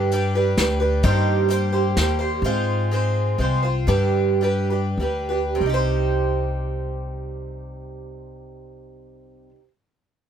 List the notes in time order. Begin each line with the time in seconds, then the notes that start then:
Already playing: G2 D3 G3 D4 G4 B4
0.11 G3 D4 G4 B4, closed hi-hat
0.35 G3 D4 G4 B4
0.57 D2 G3 D4 G4 B4, snare, closed hi-hat
0.80 G3 D4 G4 B4
1.03 G2 D#3 G3 A#3 G4 C5, kick, closed hi-hat
1.49 G3 A#3 G4 C5, closed hi-hat
1.72 G3 A#3 G4 C5
1.97 D#2 G3 A#3 G4 C5, snare, closed hi-hat
2.19 G3 A#3 G4 C5
2.42 G#2 G#3 C4 F4 C5
2.91 G#3 C4 F4 C5
3.38 C2 G#3 C4 F4 C5
3.62 C4 F4 C5
3.87 G2 D3 G3 D4 G4 B4
4.41 G3 D4 G4 B4
4.70 G3 D4 G4 B4
4.98 D2 G3 D4 G4
5.02 B4
5.29 G3 D4 G4 B4
5.55 C3
5.60 C2 G3
5.66 D#4 G4
5.74 C5